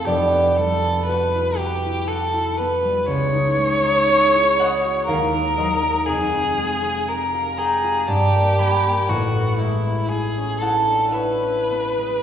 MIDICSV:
0, 0, Header, 1, 3, 480
1, 0, Start_track
1, 0, Tempo, 1027397
1, 27, Time_signature, 3, 2, 24, 8
1, 507, Tempo, 1000000
1, 4347, Tempo, 1030928
1, 5307, Tempo, 1132075
1, 5765, End_track
2, 0, Start_track
2, 0, Title_t, "Violin"
2, 0, Program_c, 0, 40
2, 25, Note_on_c, 0, 67, 71
2, 264, Note_on_c, 0, 69, 79
2, 271, Note_off_c, 0, 67, 0
2, 492, Note_off_c, 0, 69, 0
2, 495, Note_on_c, 0, 71, 76
2, 746, Note_on_c, 0, 67, 79
2, 753, Note_off_c, 0, 71, 0
2, 982, Note_on_c, 0, 69, 80
2, 990, Note_off_c, 0, 67, 0
2, 1221, Note_on_c, 0, 71, 75
2, 1228, Note_off_c, 0, 69, 0
2, 1453, Note_on_c, 0, 73, 98
2, 1460, Note_off_c, 0, 71, 0
2, 2417, Note_off_c, 0, 73, 0
2, 2419, Note_on_c, 0, 70, 91
2, 2894, Note_on_c, 0, 68, 85
2, 2901, Note_off_c, 0, 70, 0
2, 3386, Note_on_c, 0, 70, 76
2, 3393, Note_off_c, 0, 68, 0
2, 3625, Note_on_c, 0, 68, 70
2, 3632, Note_off_c, 0, 70, 0
2, 3858, Note_on_c, 0, 67, 84
2, 3865, Note_off_c, 0, 68, 0
2, 4350, Note_on_c, 0, 66, 69
2, 4357, Note_off_c, 0, 67, 0
2, 4578, Note_off_c, 0, 66, 0
2, 4580, Note_on_c, 0, 64, 61
2, 4813, Note_on_c, 0, 68, 65
2, 4820, Note_off_c, 0, 64, 0
2, 5044, Note_on_c, 0, 69, 69
2, 5051, Note_off_c, 0, 68, 0
2, 5291, Note_off_c, 0, 69, 0
2, 5294, Note_on_c, 0, 71, 75
2, 5765, Note_off_c, 0, 71, 0
2, 5765, End_track
3, 0, Start_track
3, 0, Title_t, "Harp"
3, 0, Program_c, 1, 46
3, 0, Note_on_c, 1, 57, 49
3, 0, Note_on_c, 1, 64, 59
3, 0, Note_on_c, 1, 72, 72
3, 0, Note_on_c, 1, 76, 103
3, 28, Note_on_c, 1, 29, 67
3, 31, Note_on_c, 1, 74, 84
3, 35, Note_on_c, 1, 41, 65
3, 38, Note_on_c, 1, 71, 64
3, 48, Note_off_c, 1, 57, 0
3, 48, Note_off_c, 1, 72, 0
3, 151, Note_on_c, 1, 59, 54
3, 271, Note_on_c, 1, 55, 61
3, 383, Note_off_c, 1, 59, 0
3, 389, Note_on_c, 1, 59, 56
3, 511, Note_on_c, 1, 66, 62
3, 629, Note_off_c, 1, 64, 0
3, 635, Note_on_c, 1, 64, 58
3, 744, Note_off_c, 1, 66, 0
3, 750, Note_on_c, 1, 66, 61
3, 873, Note_off_c, 1, 64, 0
3, 879, Note_on_c, 1, 64, 50
3, 989, Note_off_c, 1, 66, 0
3, 995, Note_on_c, 1, 66, 66
3, 1074, Note_off_c, 1, 64, 0
3, 1108, Note_on_c, 1, 64, 61
3, 1226, Note_off_c, 1, 59, 0
3, 1231, Note_on_c, 1, 59, 61
3, 1346, Note_off_c, 1, 55, 0
3, 1352, Note_on_c, 1, 55, 51
3, 1462, Note_on_c, 1, 37, 70
3, 1475, Note_off_c, 1, 29, 0
3, 1476, Note_off_c, 1, 74, 0
3, 1478, Note_off_c, 1, 41, 0
3, 1478, Note_off_c, 1, 66, 0
3, 1479, Note_off_c, 1, 59, 0
3, 1479, Note_off_c, 1, 71, 0
3, 1481, Note_off_c, 1, 55, 0
3, 1582, Note_on_c, 1, 63, 51
3, 1636, Note_off_c, 1, 76, 0
3, 1706, Note_on_c, 1, 56, 59
3, 1818, Note_off_c, 1, 63, 0
3, 1824, Note_on_c, 1, 63, 63
3, 1951, Note_on_c, 1, 68, 66
3, 2069, Note_off_c, 1, 64, 0
3, 2074, Note_on_c, 1, 64, 60
3, 2186, Note_off_c, 1, 68, 0
3, 2191, Note_on_c, 1, 68, 62
3, 2191, Note_on_c, 1, 78, 99
3, 2196, Note_on_c, 1, 75, 82
3, 2312, Note_on_c, 1, 66, 49
3, 2423, Note_on_c, 1, 77, 84
3, 2426, Note_on_c, 1, 39, 74
3, 2430, Note_on_c, 1, 70, 66
3, 2440, Note_off_c, 1, 37, 0
3, 2443, Note_off_c, 1, 56, 0
3, 2444, Note_off_c, 1, 68, 0
3, 2446, Note_off_c, 1, 64, 0
3, 2509, Note_off_c, 1, 66, 0
3, 2542, Note_off_c, 1, 63, 0
3, 2547, Note_on_c, 1, 63, 61
3, 2592, Note_off_c, 1, 78, 0
3, 2658, Note_off_c, 1, 75, 0
3, 2664, Note_on_c, 1, 75, 84
3, 2670, Note_on_c, 1, 54, 59
3, 2674, Note_on_c, 1, 72, 68
3, 2777, Note_off_c, 1, 63, 0
3, 2783, Note_on_c, 1, 63, 52
3, 2901, Note_on_c, 1, 29, 67
3, 2903, Note_on_c, 1, 41, 64
3, 2922, Note_off_c, 1, 63, 0
3, 2923, Note_off_c, 1, 75, 0
3, 2925, Note_off_c, 1, 39, 0
3, 2927, Note_off_c, 1, 54, 0
3, 2927, Note_off_c, 1, 70, 0
3, 3029, Note_on_c, 1, 60, 57
3, 3146, Note_on_c, 1, 56, 59
3, 3257, Note_off_c, 1, 60, 0
3, 3263, Note_on_c, 1, 60, 55
3, 3390, Note_on_c, 1, 67, 61
3, 3509, Note_on_c, 1, 65, 57
3, 3621, Note_off_c, 1, 67, 0
3, 3621, Note_on_c, 1, 82, 95
3, 3626, Note_on_c, 1, 67, 56
3, 3629, Note_on_c, 1, 79, 80
3, 3742, Note_off_c, 1, 65, 0
3, 3748, Note_on_c, 1, 65, 51
3, 3862, Note_on_c, 1, 81, 85
3, 3864, Note_on_c, 1, 43, 76
3, 3868, Note_on_c, 1, 74, 65
3, 3882, Note_off_c, 1, 29, 0
3, 3882, Note_off_c, 1, 60, 0
3, 3883, Note_off_c, 1, 41, 0
3, 3883, Note_off_c, 1, 56, 0
3, 3885, Note_off_c, 1, 77, 0
3, 3889, Note_off_c, 1, 72, 0
3, 3950, Note_off_c, 1, 65, 0
3, 3995, Note_on_c, 1, 58, 62
3, 4030, Note_off_c, 1, 82, 0
3, 4108, Note_on_c, 1, 83, 105
3, 4111, Note_on_c, 1, 55, 53
3, 4115, Note_on_c, 1, 80, 85
3, 4225, Note_off_c, 1, 58, 0
3, 4231, Note_on_c, 1, 58, 49
3, 4347, Note_on_c, 1, 33, 62
3, 4350, Note_on_c, 1, 45, 69
3, 4366, Note_off_c, 1, 43, 0
3, 4366, Note_off_c, 1, 74, 0
3, 4367, Note_off_c, 1, 67, 0
3, 4367, Note_off_c, 1, 79, 0
3, 4368, Note_off_c, 1, 55, 0
3, 4368, Note_off_c, 1, 58, 0
3, 4475, Note_on_c, 1, 59, 53
3, 4589, Note_on_c, 1, 56, 56
3, 4707, Note_off_c, 1, 59, 0
3, 4713, Note_on_c, 1, 59, 52
3, 4827, Note_on_c, 1, 64, 58
3, 4949, Note_on_c, 1, 61, 48
3, 5051, Note_off_c, 1, 81, 0
3, 5057, Note_on_c, 1, 81, 93
3, 5058, Note_off_c, 1, 64, 0
3, 5062, Note_on_c, 1, 78, 66
3, 5064, Note_on_c, 1, 64, 55
3, 5182, Note_on_c, 1, 62, 41
3, 5294, Note_off_c, 1, 64, 0
3, 5295, Note_on_c, 1, 76, 87
3, 5299, Note_on_c, 1, 64, 57
3, 5303, Note_on_c, 1, 73, 61
3, 5388, Note_off_c, 1, 62, 0
3, 5417, Note_off_c, 1, 61, 0
3, 5422, Note_on_c, 1, 61, 51
3, 5535, Note_off_c, 1, 59, 0
3, 5540, Note_on_c, 1, 59, 48
3, 5653, Note_off_c, 1, 56, 0
3, 5658, Note_on_c, 1, 56, 43
3, 5765, Note_off_c, 1, 33, 0
3, 5765, Note_off_c, 1, 45, 0
3, 5765, Note_off_c, 1, 56, 0
3, 5765, Note_off_c, 1, 59, 0
3, 5765, Note_off_c, 1, 61, 0
3, 5765, Note_off_c, 1, 64, 0
3, 5765, Note_off_c, 1, 73, 0
3, 5765, Note_off_c, 1, 76, 0
3, 5765, Note_off_c, 1, 78, 0
3, 5765, Note_off_c, 1, 80, 0
3, 5765, Note_off_c, 1, 81, 0
3, 5765, Note_off_c, 1, 83, 0
3, 5765, End_track
0, 0, End_of_file